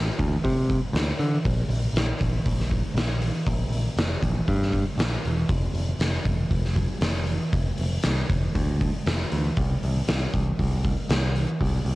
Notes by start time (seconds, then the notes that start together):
0.19 D2, kick, open hi-hat
0.44 C3, kick, open hi-hat
0.70 kick, open hi-hat
0.93 D2, snare, open hi-hat
1.19 D3, open hi-hat
1.45 A#1, kick, open hi-hat
1.69 A#1, open hi-hat
1.93 A#1, snare, open hi-hat
2.21 A#1, kick, open hi-hat
2.45 A#1, kick, open hi-hat
2.60 snare
2.71 kick, open hi-hat
2.94 A#1, snare, open hi-hat
3.22 open hi-hat
3.47 A#1, kick, open hi-hat
3.69 A#1, open hi-hat
3.97 F1, snare, open hi-hat
4.22 A#1, kick, open hi-hat
4.48 G2, kick, open hi-hat
4.62 snare
4.73 kick, open hi-hat
4.98 A#1, snare, open hi-hat
5.25 E1, open hi-hat
5.49 F1, kick, open hi-hat
5.74 F1, open hi-hat
5.99 F1, snare, open hi-hat
6.25 F1, kick, open hi-hat
6.51 F1, kick, open hi-hat
6.65 snare
6.76 kick, open hi-hat
7.01 F1, snare, open hi-hat
7.27 open hi-hat
7.53 F1, kick, open hi-hat
7.78 F1, open hi-hat
8.03 C2, snare, open hi-hat
8.29 F1, kick, open hi-hat
8.55 D2, kick, open hi-hat
8.81 kick, open hi-hat
9.06 F1, snare, open hi-hat
9.32 D2, open hi-hat
9.57 C2, kick, open hi-hat
9.83 C2, open hi-hat
10.08 C2, snare, open hi-hat
10.34 C2, kick, open hi-hat
10.59 C2, kick, open hi-hat
10.85 kick, open hi-hat
11.09 C2, snare, open hi-hat
11.36 open hi-hat
11.60 C2, kick, open hi-hat
11.85 C2, open hi-hat